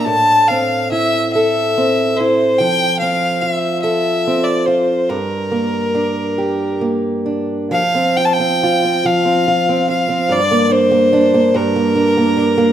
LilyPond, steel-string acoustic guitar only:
\new Staff \with { instrumentName = "Steel-string acoustic guitar" } { \time 6/8 \key f \major \tempo 4. = 48 a,8 c'8 e'8 a'8 c'8 e'8 | f8 c'8 f'8 a'8 c'8 f'8 | g,8 bes8 d'8 g'8 bes8 d'8 | f16 c'16 f'16 c'16 f'16 c'16 f16 c'16 f'16 c'16 f'16 c'16 |
g,16 bes16 d'16 bes16 d'16 bes16 g,16 bes16 d'16 bes16 d'16 bes16 | }